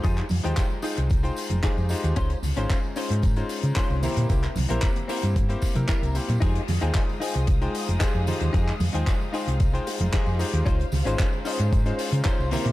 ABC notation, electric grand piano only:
X:1
M:4/4
L:1/16
Q:1/4=113
K:Fm
V:1 name="Electric grand piano"
[A,EFGc] z2 [A,EFcg]3 [A,EFcg]3 [A,EFcg]3 [A,EFGc]2 [A,EFGc]2 | [A,DEFc] z2 [A,DEFc]3 [A,DEFc]3 [A,DEFc]3 [A,DEFc]2 [B,C=EGc]2 | [B,C=EGc] z2 [B,CEGc]3 [B,CEGc]3 [B,CEGc]2 [B,CEGB]3 [B,CEGc]2 | [A,EFGc] z2 [A,EFcg]3 [A,EFcg]3 [A,EFcg]3 [A,EFGc]2 [A,EFGc]2 |
[A,EFGc] z2 [A,EFcg]3 [A,EFcg]3 [A,EFcg]3 [A,EFGc]2 [A,EFGc]2 | [A,DEFc] z2 [A,DEFc]3 [A,DEFc]3 [A,DEFc]3 [A,DEFc]2 [B,C=EGc]2 |]